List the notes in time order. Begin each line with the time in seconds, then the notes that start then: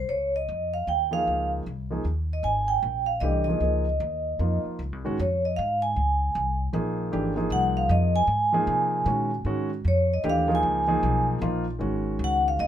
0.09 C#2 C#5
0.36 D#5
0.49 F2
0.74 F5
0.87 D#2 G5
1.11 F3 A#3 D#4 G#4 F5
1.27 C#2
1.67 C2
1.90 F3 A#3 D#4 G#4
2.05 D#2
2.33 D#5
2.43 G#1 G#5
2.68 G5
2.83 A#1
3.06 F5
3.20 C2 E3 A3 D4 G4 D#5
3.44 F3 D#5
3.48 A#3 D#4 G#4
3.60 C#2 F3 A#3 D#4 G#4
4.00 D#2
4.39 F2 F3 A#3 D#4 F4
4.65 muted upright bass stroke
4.79 C#2
4.92 C2
5.05 G#1 D#3 G#3 C#4 F#4
5.19 F2 C#5
5.45 D#5
5.56 G#2 F5
5.82 G#5
5.96 C#2
6.35 C2
6.73 A#1 F3 A#3 D#4 G#4
7.11 G#1 E3 A3 D4 G4
7.36 F3 A#3 D#4 G#4
7.50 C2 F#5
7.77 F5
7.89 F2 D#5
8.16 G#5
8.27 G#2
8.52 F3 A#3 D#4 G#4
8.67 C3
9.06 A#2 D#3 G#3 C#4 F#4
9.45 G#2 D#3 G#3 C#4 F#4
9.85 F2 C#5
10.14 D#5
10.23 D#2 E3 A3 D4 G4
10.30 F5
10.48 F3 A#3 D#4 G#4
10.55 G#5
10.63 C#2
10.87 F3 A#3 D#4 G#4
11.03 B1
11.40 A#1 F3 A#3 D#4 F4
11.79 G#1 D#3 G#3 C#4 F#4
12.19 C#2
12.24 F#5
12.48 F5
12.59 D#2 D#5